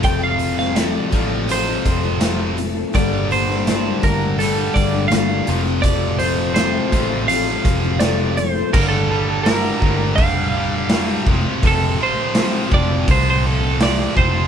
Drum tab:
CC |----------------|----------------|----------------|x---------------|
HH |x-x-x-x-x-x-x-x-|x-x-x-x-x-x-x-x-|x-x-x-x-x-x-x-x-|----o---o---o---|
SD |---oo-------o-o-|---oo-------o---|----o-------o---|----o-------o---|
BD |o-----o---o-----|o-----o---o-----|o-----o---o-----|o-----o-o-----o-|

CC |----------------|
HH |o---o---o---o---|
SD |----o-------o---|
BD |o-----o-o-----o-|